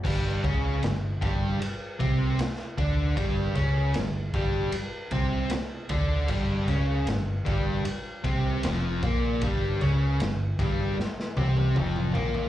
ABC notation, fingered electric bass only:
X:1
M:4/4
L:1/8
Q:1/4=77
K:C
V:1 name="Fingered electric bass" clef=bass
G,,, ^C,, G,,, G,,, z =C,, z D,, | G,,, ^C,, G,,, G,,, z =C,, z D,, | G,,, ^C,, G,,, G,,, z =C,, F,,, _B,,, | G,,, ^C,, G,,, G,,, z =C,, F,,, _B,,, |]